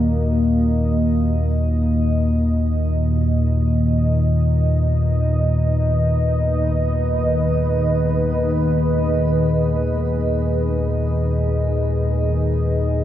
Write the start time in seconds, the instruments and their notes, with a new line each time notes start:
Already playing: synth drone D#2 A#2, analog synth pad A#3 F#4 D#5
4.10 analog synth pad D#3
4.43 analog synth pad B4
7.01 analog synth pad G#4